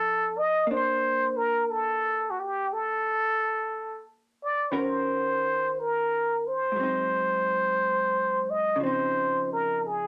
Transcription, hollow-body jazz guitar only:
Already playing: F3 C4 D#4 A4
0.67 A#3
0.71 D4
0.77 C5
4.72 D#3 C#4 F#4 A#4
6.72 G#2
6.76 F#3 C4
6.83 D#4
8.76 C#3
8.80 F3 C4
8.86 D#4

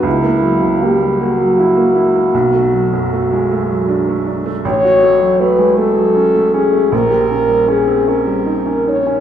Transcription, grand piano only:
0.03 C#2
0.23 A#3
0.42 F#3
0.62 C#3
0.83 A#3
1.01 G3
1.21 A#3
1.41 F#3
1.59 E4
1.77 A#3
1.95 E4
2.15 A#3
2.34 B1
2.55 A3
2.73 F#3
2.93 F#2
3.13 A3
3.33 G#3
3.51 A3
3.70 F#3
3.88 D4
4.09 A3
4.27 D4
4.46 A3
4.65 A1
4.84 F#4
5.03 A3
5.20 F#3
5.40 A3
5.58 G#3
5.78 A3
5.96 F#3
6.16 C#4
6.35 A3
6.54 C#4
6.73 A3
6.92 A#1
7.10 G4
7.30 C#4
7.49 G3
7.68 C#4
7.87 C4
8.08 C#4
8.27 G3
8.46 D#4
8.66 C#4
8.87 D#4
9.07 C#4

